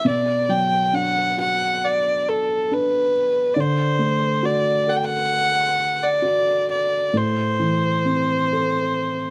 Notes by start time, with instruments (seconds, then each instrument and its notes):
0.05 felt piano B2, fiddle D5
0.49 felt piano F#3, fiddle G5
0.93 felt piano D4, fiddle F#5
1.38 felt piano F#4, fiddle F#5
1.85 fiddle D5
2.29 fiddle A4
2.71 felt piano D4, fiddle B4
3.54 felt piano D3, fiddle D5
3.61 fiddle C5
3.99 felt piano A3
4.43 felt piano F#4, fiddle D5
4.87 felt piano A4, fiddle F#5
4.96 fiddle G5
5.05 fiddle F#5
6.03 fiddle D5
6.22 felt piano F#4
6.71 fiddle D5
7.13 felt piano A2, fiddle C5
7.59 felt piano E3
8.05 felt piano C4
8.53 felt piano A4